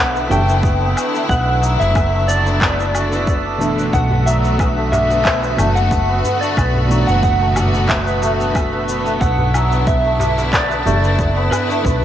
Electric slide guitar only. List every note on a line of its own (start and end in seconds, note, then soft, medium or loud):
0.00 0.27 F#5 loud
0.31 1.29 G5 loud
1.29 1.81 F#5 loud
1.80 2.30 E5 loud
2.28 3.56 D5 medium
3.94 4.28 F#5 loud
4.26 4.91 E5 loud
4.92 5.78 E5 loud
5.75 6.44 F#5 loud
6.41 7.09 D5 medium
7.07 7.21 F#5 loud
7.23 7.91 F#5 medium
7.89 8.84 E5 medium
9.21 9.87 F#5 loud
9.87 10.52 E5 medium
10.53 11.48 D5 medium
11.51 12.05 B4 medium